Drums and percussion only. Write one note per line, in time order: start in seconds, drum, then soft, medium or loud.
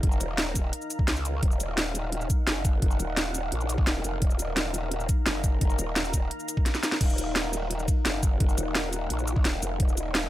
0.03 kick loud
0.03 closed hi-hat medium
0.12 shaker soft
0.21 closed hi-hat medium
0.21 shaker medium
0.38 snare loud
0.38 closed hi-hat medium
0.55 kick medium
0.55 closed hi-hat medium
0.55 shaker medium
0.73 closed hi-hat medium
0.82 shaker soft
0.90 closed hi-hat medium
0.90 shaker medium
0.99 kick loud
1.08 snare loud
1.08 closed hi-hat medium
1.16 shaker soft
1.25 closed hi-hat medium
1.25 shaker medium
1.43 kick loud
1.43 closed hi-hat medium
1.51 shaker soft
1.60 closed hi-hat medium
1.60 shaker medium
1.78 snare loud
1.78 closed hi-hat medium
1.95 closed hi-hat medium
1.95 shaker medium
2.12 closed hi-hat medium
2.21 shaker soft
2.30 kick loud
2.30 closed hi-hat medium
2.30 shaker medium
2.47 snare loud
2.47 closed hi-hat medium
2.65 kick loud
2.65 closed hi-hat medium
2.65 shaker medium
2.82 kick loud
2.82 closed hi-hat loud
2.91 shaker soft
3.00 closed hi-hat medium
3.00 shaker medium
3.17 snare loud
3.17 closed hi-hat medium
3.35 closed hi-hat medium
3.35 shaker medium
3.52 closed hi-hat medium
3.61 shaker soft
3.69 closed hi-hat medium
3.69 shaker medium
3.78 kick loud
3.87 snare loud
3.87 closed hi-hat medium
4.04 closed hi-hat medium
4.04 shaker medium
4.22 kick loud
4.22 closed hi-hat medium
4.30 shaker soft
4.39 closed hi-hat medium
4.39 shaker medium
4.57 snare loud
4.57 closed hi-hat medium
4.74 closed hi-hat medium
4.74 shaker medium
4.91 closed hi-hat medium
5.00 shaker soft
5.09 kick loud
5.09 closed hi-hat medium
5.09 shaker medium
5.26 snare loud
5.26 closed hi-hat medium
5.44 kick loud
5.44 closed hi-hat medium
5.44 shaker medium
5.61 kick loud
5.61 closed hi-hat loud
5.70 shaker soft
5.79 closed hi-hat medium
5.79 shaker medium
5.96 snare loud
5.96 closed hi-hat loud
6.05 shaker soft
6.14 kick medium
6.14 closed hi-hat medium
6.14 shaker medium
6.31 closed hi-hat loud
6.40 shaker soft
6.48 closed hi-hat medium
6.48 shaker medium
6.57 kick loud
6.66 snare medium
6.66 closed hi-hat loud
6.75 snare medium
6.75 shaker soft
6.83 snare medium
6.83 closed hi-hat medium
6.83 shaker medium
6.92 snare medium
7.01 kick loud
7.01 closed hi-hat loud
7.01 crash medium
7.10 shaker soft
7.18 closed hi-hat medium
7.18 shaker medium
7.36 snare loud
7.36 closed hi-hat loud
7.53 closed hi-hat medium
7.53 shaker medium
7.71 closed hi-hat loud
7.79 shaker soft
7.88 kick loud
7.88 closed hi-hat medium
7.88 shaker medium
8.05 snare loud
8.05 closed hi-hat loud
8.23 kick loud
8.23 closed hi-hat medium
8.23 shaker medium
8.40 kick loud
8.40 closed hi-hat loud
8.49 shaker soft
8.58 closed hi-hat medium
8.58 shaker medium
8.75 snare loud
8.75 closed hi-hat loud
8.93 closed hi-hat medium
8.93 shaker medium
9.10 closed hi-hat loud
9.19 shaker soft
9.28 closed hi-hat medium
9.28 shaker medium
9.36 kick loud
9.45 snare loud
9.45 closed hi-hat loud
9.62 closed hi-hat medium
9.62 shaker medium
9.80 kick loud
9.80 closed hi-hat loud
9.89 shaker soft
9.97 closed hi-hat medium
9.97 shaker medium
10.15 snare loud
10.15 closed hi-hat loud